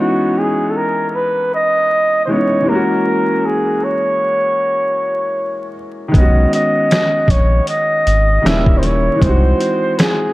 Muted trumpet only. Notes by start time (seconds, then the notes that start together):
0.00 F#4
0.38 G#4
0.70 A4
0.76 A#4
1.09 A#4
1.15 B4
1.54 D#5
2.25 C5
2.30 C#5
2.69 A#4
3.45 G#4
3.84 C#5
6.16 D#5
6.54 D#5
7.30 C#5
7.68 D#5
8.46 E5
8.78 C5
8.84 C#5
9.22 C5
9.99 G#4